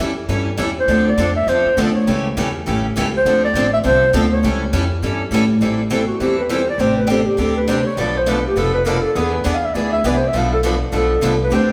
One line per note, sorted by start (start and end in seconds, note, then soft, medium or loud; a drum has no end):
0.00 0.28 F2 medium
0.00 0.10 E3 medium
0.00 0.11 G3 medium
0.00 0.11 C#4 medium
0.00 0.11 E4 medium
0.00 0.11 A4 medium
0.28 0.58 G2 medium
0.28 0.49 E3 medium
0.28 0.49 G3 medium
0.28 0.49 C#4 medium
0.28 0.49 E4 medium
0.28 0.49 A4 medium
0.58 0.87 E2 medium
0.58 0.69 E3 medium
0.58 0.69 G3 medium
0.58 0.70 C#4 medium
0.58 0.70 E4 loud
0.58 0.70 A4 medium
0.80 1.06 C5 medium
0.88 1.17 D2 medium
0.88 1.08 D3 medium
0.88 1.08 F3 medium
0.88 1.09 C4 medium
0.88 1.08 D4 medium
0.88 1.09 A4 medium
1.08 1.35 D5 medium
1.18 1.46 F2 loud
1.18 1.29 D3 medium
1.18 1.29 F3 medium
1.18 1.29 C4 medium
1.18 1.29 D4 medium
1.18 1.30 A4 loud
1.36 1.50 E5 medium
1.47 1.63 E2 medium
1.47 1.67 D3 medium
1.47 1.67 F3 medium
1.47 1.68 C4 medium
1.47 1.68 D4 medium
1.47 1.68 A4 medium
1.47 1.78 C5 loud
1.65 muted upright bass stroke soft
1.77 2.06 D2 loud
1.77 1.88 D3 loud
1.77 1.88 F3 loud
1.77 1.88 C4 medium
1.77 1.88 D4 loud
1.77 1.89 A4 medium
1.94 2.34 C#5 medium
2.07 2.36 C#2 medium
2.07 2.26 C#3 medium
2.07 2.26 E3 medium
2.07 2.26 G3 medium
2.07 2.27 A3 medium
2.07 2.26 C#4 medium
2.07 2.27 E4 medium
2.07 2.27 G4 medium
2.07 2.27 A4 medium
2.07 2.27 C#5 medium
2.37 2.66 E2 medium
2.37 2.47 C#3 medium
2.37 2.47 E3 medium
2.37 2.47 G3 medium
2.37 2.48 A3 loud
2.37 2.48 C#4 medium
2.37 2.48 E4 medium
2.37 2.48 G4 loud
2.37 2.48 A4 medium
2.37 2.48 C#5 medium
2.66 2.96 A1 medium
2.66 2.85 C#3 medium
2.66 2.85 E3 medium
2.66 2.86 G3 medium
2.66 2.85 A3 medium
2.66 2.86 C#4 medium
2.66 2.86 E4 medium
2.66 2.86 G4 medium
2.66 2.86 A4 medium
2.66 2.86 C#5 medium
2.96 3.25 C#2 medium
2.96 3.06 C#3 loud
2.96 3.07 E3 medium
2.96 3.06 G3 medium
2.96 3.07 A3 loud
2.96 3.07 C#4 loud
2.96 3.07 E4 loud
2.96 3.07 G4 loud
2.96 3.07 A4 medium
2.96 3.07 C#5 medium
3.17 3.43 C5 loud
3.25 3.53 D2 medium
3.25 3.45 D3 medium
3.25 3.45 F3 medium
3.25 3.45 C4 medium
3.25 3.45 D4 medium
3.25 3.45 A4 medium
3.45 3.71 D5 loud
3.54 3.83 A1 loud
3.54 3.65 D3 medium
3.54 3.66 F3 medium
3.54 3.66 C4 loud
3.54 3.66 D4 medium
3.54 3.66 A4 medium
3.73 3.79 E5 loud
3.83 4.13 C2 medium
3.83 4.03 D3 medium
3.83 4.03 F3 medium
3.83 4.03 C4 medium
3.83 4.04 D4 medium
3.83 4.04 A4 medium
3.83 4.12 C5 loud
4.13 4.42 D2 medium
4.13 4.24 D3 medium
4.13 4.24 F3 medium
4.13 4.24 C4 loud
4.13 4.24 D4 medium
4.13 4.25 A4 loud
4.32 4.71 C#5 medium
4.43 4.72 C#2 medium
4.43 4.62 E3 medium
4.43 4.62 G3 medium
4.43 4.63 C#4 medium
4.43 4.63 E4 medium
4.43 4.63 A4 medium
4.73 5.02 F2 loud
4.73 4.83 E3 medium
4.73 4.84 G3 medium
4.73 4.84 C#4 medium
4.73 4.84 E4 medium
4.73 4.84 A4 medium
5.02 5.30 G2 medium
5.02 5.21 E3 medium
5.02 5.22 G3 medium
5.02 5.22 C#4 medium
5.02 5.22 E4 medium
5.02 5.22 A4 medium
5.31 5.60 A2 medium
5.31 5.42 E3 medium
5.31 5.42 G3 medium
5.31 5.42 C#4 medium
5.31 5.42 E4 loud
5.31 5.42 A4 medium
5.61 6.09 A1 medium
5.61 5.80 E3 medium
5.61 5.80 G3 medium
5.61 5.80 C4 medium
5.61 5.80 E4 medium
5.61 5.80 A4 medium
5.90 6.01 E3 medium
5.90 6.01 G3 medium
5.90 6.01 C4 medium
5.90 6.02 E4 medium
5.90 6.06 A4 medium
5.90 6.02 A4 medium
6.07 6.22 F#4 medium
6.20 6.68 E2 medium
6.20 6.39 E3 medium
6.20 6.40 G3 medium
6.20 6.40 C4 medium
6.20 6.40 E4 medium
6.20 6.37 G4 medium
6.20 6.40 A4 medium
6.39 6.52 B4 medium
6.50 6.60 E3 medium
6.50 6.60 G3 medium
6.50 6.61 C4 medium
6.50 6.61 E4 medium
6.50 6.61 A4 medium
6.50 6.67 C5 medium
6.69 6.81 D5 loud
6.78 7.26 A1 medium
6.78 6.98 C3 medium
6.78 6.99 G3 medium
6.78 6.98 C4 medium
6.78 6.99 D4 medium
6.78 6.99 G4 medium
6.78 6.96 C5 medium
6.97 7.12 B4 medium
7.10 7.20 C3 medium
7.10 7.20 G3 medium
7.10 7.20 C4 medium
7.10 7.20 D4 medium
7.10 7.20 G4 medium
7.10 7.28 A4 medium
7.26 7.41 G4 medium
7.38 7.86 D2 medium
7.38 7.57 C3 medium
7.38 7.58 G3 medium
7.38 7.58 C4 medium
7.38 7.58 D4 medium
7.38 7.58 G4 medium
7.38 7.56 A4 medium
7.56 7.70 B4 medium
7.69 7.79 C3 medium
7.69 7.79 G3 medium
7.69 7.79 C4 medium
7.69 7.79 D4 loud
7.69 7.79 G4 medium
7.69 7.86 C5 medium
7.86 8.01 C#5 loud
7.97 8.45 B1 medium
7.97 8.16 B2 medium
7.97 8.17 F3 medium
7.97 8.17 A3 medium
7.97 8.17 D4 medium
7.97 8.17 A4 medium
7.97 8.17 B4 medium
7.97 8.19 D5 medium
8.18 8.31 C5 medium
8.27 8.38 B2 medium
8.27 8.38 F3 medium
8.27 8.38 A3 medium
8.27 8.38 D4 medium
8.27 8.38 A4 medium
8.27 8.38 B4 medium
8.27 8.45 B4 medium
8.47 8.59 G4 medium
8.56 9.04 F1 medium
8.56 8.75 B2 medium
8.56 8.75 F3 medium
8.56 8.75 A3 medium
8.56 8.76 D4 medium
8.56 8.76 A4 medium
8.56 8.73 A4 medium
8.56 8.76 B4 medium
8.73 8.88 B4 medium
8.85 8.96 B2 medium
8.85 8.96 F3 medium
8.85 8.96 A3 medium
8.85 8.96 D4 medium
8.85 8.97 A4 medium
8.85 9.04 A#4 medium
8.85 8.97 B4 loud
9.02 9.18 A4 loud
9.15 9.39 E2 medium
9.15 9.35 E3 medium
9.15 9.35 B3 medium
9.15 9.35 D4 medium
9.15 9.35 G#4 medium
9.15 9.35 B4 medium
9.33 9.47 B4 medium
9.45 9.71 E2 medium
9.45 9.56 E3 medium
9.45 9.56 B3 medium
9.45 9.56 D4 medium
9.45 9.56 G#4 loud
9.45 9.56 B4 loud
9.45 9.56 D5 medium
9.55 9.67 F5 medium
9.65 9.75 E5 medium
9.74 10.00 D2 medium
9.74 9.94 E3 medium
9.74 9.94 B3 medium
9.74 9.94 D4 medium
9.74 9.94 G#4 medium
9.74 9.94 B4 medium
9.74 9.91 D5 medium
9.93 10.08 E5 loud
10.04 10.29 C2 medium
10.04 10.15 E3 medium
10.04 10.15 B3 medium
10.04 10.15 D4 medium
10.04 10.15 G#4 medium
10.04 10.15 B4 medium
10.04 10.18 D5 medium
10.16 10.29 C5 medium
10.28 10.39 E5 medium
10.34 10.81 B1 medium
10.34 10.53 B2 medium
10.34 10.53 F3 medium
10.34 10.54 A3 medium
10.34 10.54 D4 medium
10.34 10.54 A4 medium
10.34 10.54 B4 medium
10.34 10.53 F5 loud
10.53 10.60 A4 medium
10.63 10.74 B2 medium
10.63 10.74 F3 medium
10.63 10.74 A3 medium
10.63 10.74 D4 loud
10.63 10.74 A4 medium
10.63 10.75 B4 medium
10.92 11.18 B1 medium
10.92 11.11 B2 medium
10.92 11.11 F3 medium
10.92 11.12 A3 medium
10.92 11.12 D4 medium
10.92 11.12 A4 medium
10.92 11.37 A4 medium
10.92 11.12 B4 medium
11.21 11.47 C2 medium
11.21 11.32 B2 medium
11.21 11.32 F3 medium
11.21 11.33 A3 medium
11.21 11.33 D4 medium
11.21 11.33 A4 medium
11.21 11.33 B4 loud
11.42 11.56 B4 medium
11.50 11.72 D2 loud
11.50 11.70 D3 medium
11.50 11.70 G3 medium
11.50 11.70 C4 medium
11.50 11.71 D4 medium
11.50 11.71 G4 medium
11.54 11.70 C5 medium